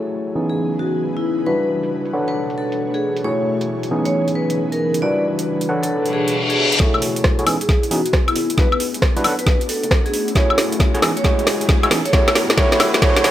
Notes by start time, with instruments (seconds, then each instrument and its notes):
Already playing: ambient pad E3 G#4, tine electric piano A3 E4 F#4 G#4 C#5
0.05 closed hi-hat
0.28 closed hi-hat
0.35 ambient pad C#3 D#4 B4, tine electric piano E3 B3 C#4 D#4 G#4
0.50 vibraphone G#4, closed hi-hat
0.72 closed hi-hat
0.79 vibraphone F#4
0.94 closed hi-hat
1.16 vibraphone E4, closed hi-hat
1.39 closed hi-hat
1.46 tine electric piano G3 D4 E4 F#4 B4, ambient pad D4 F#4, vibraphone B4
1.83 closed hi-hat
2.05 closed hi-hat
2.13 ambient pad B2 A3 C#5, tine electric piano D4 A4 B4 C#5 F#5
2.28 vibraphone B4, closed hi-hat
2.50 closed hi-hat
2.58 vibraphone A4
2.72 closed hi-hat
2.94 vibraphone G#4, closed hi-hat
3.17 closed hi-hat
3.24 ambient pad E3 G#4, tine electric piano A3 E4 F#4 G#4 C#5, vibraphone C#5
3.61 closed hi-hat
3.83 closed hi-hat
3.91 ambient pad C#3 D#4 B4, tine electric piano E3 B3 C#4 D#4 G#4
4.05 vibraphone C#5, closed hi-hat
4.28 closed hi-hat
4.35 vibraphone B4
4.50 closed hi-hat
4.72 vibraphone A#4, closed hi-hat
4.94 closed hi-hat
5.02 tine electric piano G3 D4 E4 F#4 B4, ambient pad D4, vibraphone D5
5.39 closed hi-hat
5.61 closed hi-hat
5.69 ambient pad B2 F#4 A4 C#5, tine electric piano D4 A4 B4 C#5 F#5
5.83 vibraphone A4, closed hi-hat
5.91 reverse cymbal
6.06 closed hi-hat
6.13 vibraphone G#4
6.28 closed hi-hat
6.50 vibraphone G#4, closed hi-hat
6.72 closed hi-hat
6.80 analog synth bass F#1, tine electric piano A3 E4 F#4 G#4 C#5, ambient pad E4 G#4, kick, snare, riser
6.94 high woodblock
7.02 open hi-hat
7.16 analog synth bass C#2, closed hi-hat
7.24 kick, cross-stick, snare
7.39 tine electric piano A3 E4 F#4 G#4 C#5, closed hi-hat
7.47 analog synth bass C#2, tine electric piano E3 B3 C#4 D#4 G#4, ambient pad B3 D#4, open hi-hat, high woodblock
7.61 vibraphone G#4, closed hi-hat
7.69 kick, snare
7.83 closed hi-hat
7.91 tine electric piano E3 B3 C#4 D#4 G#4, vibraphone F#4, open hi-hat
8.06 closed hi-hat
8.13 kick, cross-stick, snare
8.28 vibraphone E4, closed hi-hat, high woodblock
8.36 analog synth bass G#1, open hi-hat
8.50 closed hi-hat
8.58 analog synth bass E2, tine electric piano G3 D4 E4 F#4 B4, ambient pad D4, vibraphone B4, kick, snare
8.72 high woodblock
8.80 open hi-hat
8.94 analog synth bass B1, closed hi-hat
9.02 kick, cross-stick, snare
9.17 tine electric piano G3 D4 E4 F#4 B4, closed hi-hat
9.24 analog synth bass B1, ambient pad A3 C#4 F#4, tine electric piano D4 A4 B4 C#5 F#5, open hi-hat, high woodblock
9.39 vibraphone B4, closed hi-hat
9.46 kick, snare
9.61 closed hi-hat
9.69 vibraphone A4, open hi-hat
9.83 analog synth bass F#1, closed hi-hat
9.91 kick, cross-stick, snare
10.05 vibraphone G#4, closed hi-hat
10.14 open hi-hat
10.28 closed hi-hat
10.35 analog synth bass F#1, tine electric piano A3 E4 F#4 G#4 C#5, ambient pad E4 G#4, vibraphone C#5, kick, snare
10.50 high woodblock
10.58 snare, open hi-hat
10.72 analog synth bass C#2, closed hi-hat
10.80 kick, snare
10.94 tine electric piano A3 E4 F#4 G#4 C#5, closed hi-hat
11.02 analog synth bass C#2, tine electric piano E3 B3 C#4 D#4 G#4, ambient pad B3 D#5, snare, open hi-hat, high woodblock
11.17 vibraphone C#5, closed hi-hat
11.24 tine electric piano G#3 E4 F#4 G#4 C#5, vibraphone C#5, kick, snare
11.39 closed hi-hat
11.47 snare, open hi-hat
11.61 closed hi-hat
11.69 kick, snare
11.83 tine electric piano G#3 E4 F#4 G#4 C#5, closed hi-hat, high woodblock
11.91 analog synth bass G#1, tine electric piano E3 B3 C#4 D#4 G#4, snare, open hi-hat
12.05 vibraphone C#5, closed hi-hat
12.13 analog synth bass E2, tine electric piano A3 E4 F#4 G4 C#5, ambient pad D4, vibraphone C#5, kick, snare
12.28 snare, high woodblock
12.35 snare, open hi-hat
12.50 analog synth bass B1, snare, closed hi-hat
12.58 tine electric piano A3 E4 F#4 G4 C#5, vibraphone C#5, kick, snare
12.72 snare, closed hi-hat
12.80 analog synth bass B1, ambient pad C#4 F#4 A4, snare, open hi-hat, high woodblock
12.94 snare, closed hi-hat
13.02 tine electric piano A3 E4 F#4 G#4 C#5, vibraphone C#5, kick, snare
13.16 snare, closed hi-hat
13.24 tine electric piano A3 E4 F#4 G#4 C#5, vibraphone C#5, snare, open hi-hat